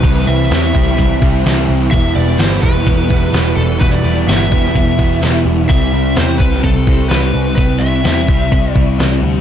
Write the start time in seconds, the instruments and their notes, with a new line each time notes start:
Already playing: lead electric guitar B4
0.02 picked electric bass C2, overdriven electric guitar C3 E3 G3 C4 E4, distorted electric guitar C3 G3 C4, kick, open hi-hat
0.26 picked electric bass C2, distorted electric guitar G3 C4, overdriven electric guitar G3 C4 E4, lead electric guitar E5
0.50 picked electric bass E2, distorted electric guitar C3 G3 C4, overdriven electric guitar E3 G3 C4 E4, snare, open hi-hat
0.73 picked electric bass C2, distorted electric guitar G3 C4, overdriven electric guitar G3 C4 E4, kick
0.98 picked electric bass C2, distorted electric guitar C3 G3 C4, kick, open hi-hat
1.21 picked electric bass C2, distorted electric guitar G3 C4, overdriven electric guitar G3 C4 E4, kick
1.44 picked electric bass C2, distorted electric guitar C3 G3 C4, overdriven electric guitar E3 G3 C4 E4, snare, open hi-hat
1.58 snare
1.69 picked electric bass C2, distorted electric guitar G3 C4
1.91 picked electric bass E1, distorted electric guitar E2 B2 E3, overdriven electric guitar E3 G3 B3 E4, lead electric guitar E5, kick, open hi-hat
2.15 picked electric bass E1, distorted electric guitar B2 E3, overdriven electric guitar G3 B3 E4, lead electric guitar D5
2.38 picked electric bass G1, distorted electric guitar E2 B2 E3, overdriven electric guitar E3 G3 B3 E4, lead electric guitar C5, snare, open hi-hat
2.62 picked electric bass E1, distorted electric guitar B2 E3, overdriven electric guitar G3 B3 E4, lead electric guitar B4, kick
2.86 picked electric bass E1, distorted electric guitar E2 B2 E3, kick, open hi-hat
3.09 picked electric bass E1, distorted electric guitar B2 E3, overdriven electric guitar G3 B3 E4, kick
3.33 picked electric bass E1, distorted electric guitar E2 B2 E3, overdriven electric guitar E3 G3 B3 E4, snare, open hi-hat
3.56 picked electric bass E1, distorted electric guitar B2 E3, lead electric guitar A4
3.80 picked electric bass E1, distorted electric guitar E2 B2 E3, overdriven electric guitar E3 G3 B3 E4, lead electric guitar B4, kick, open hi-hat
3.91 lead electric guitar D5
4.04 picked electric bass E1, distorted electric guitar B2 E3, overdriven electric guitar G3 B3 E4
4.27 picked electric bass G1, distorted electric guitar E2 B2 E3, overdriven electric guitar E3 G3 B3 E4, lead electric guitar E5, snare, open hi-hat
4.50 picked electric bass E1, distorted electric guitar B2 E3, overdriven electric guitar G3 B3 E4, kick
4.64 snare
4.75 picked electric bass E1, distorted electric guitar E2 B2 E3, kick, open hi-hat
4.98 picked electric bass E1, distorted electric guitar B2 E3, overdriven electric guitar G3 B3 E4, kick
5.21 picked electric bass E1, distorted electric guitar E2 B2 E3, overdriven electric guitar E3 G3 B3 E4, snare, open hi-hat
5.46 picked electric bass E1, distorted electric guitar B2 E3
5.68 picked electric bass C2, distorted electric guitar C3 G3 C4, overdriven electric guitar C3 G3 C4 E4, lead electric guitar E5, kick, open hi-hat
5.93 picked electric bass C2, distorted electric guitar G3 C4, overdriven electric guitar G3 C4 E4
6.16 picked electric bass E2, distorted electric guitar C3 G3 C4, overdriven electric guitar C3 G3 C4 E4, lead electric guitar C5, snare, open hi-hat
6.39 picked electric bass C2, distorted electric guitar G3 C4, overdriven electric guitar G3 C4 E4, lead electric guitar B4, kick
6.53 snare
6.63 picked electric bass C2, distorted electric guitar C3 G3 C4, lead electric guitar A4, kick, open hi-hat
6.86 picked electric bass C2, distorted electric guitar G3 C4, overdriven electric guitar G3 C4 E4, kick
7.09 picked electric bass C2, overdriven electric guitar C3 G3 C4 E4, distorted electric guitar C3 G3 C4, lead electric guitar B4, snare, open hi-hat
7.33 picked electric bass C2, distorted electric guitar G3 C4
7.56 picked electric bass C2, distorted electric guitar C3 G3 C4, overdriven electric guitar C3 G3 C4, lead electric guitar B4, kick, open hi-hat
7.60 overdriven electric guitar E4
7.78 picked electric bass C2, distorted electric guitar G3 C4, overdriven electric guitar E4, lead electric guitar E5
7.83 overdriven electric guitar G3 C4
8.04 picked electric bass E2, overdriven electric guitar C3 G3 C4 E4, distorted electric guitar C3 G3 C4, snare, open hi-hat
8.28 picked electric bass C2, distorted electric guitar G3 C4, overdriven electric guitar G3 C4 E4, kick
8.51 picked electric bass C2, distorted electric guitar C3 G3 C4, kick, open hi-hat
8.71 distorted electric guitar C4, overdriven electric guitar E4, lead electric guitar D5
8.76 picked electric bass C2, overdriven electric guitar G3 C4, distorted electric guitar G3, kick
8.98 picked electric bass C2, distorted electric guitar C3 G3 C4, overdriven electric guitar C3 G3 C4 E4, snare, open hi-hat
9.21 picked electric bass D2, distorted electric guitar G3 C4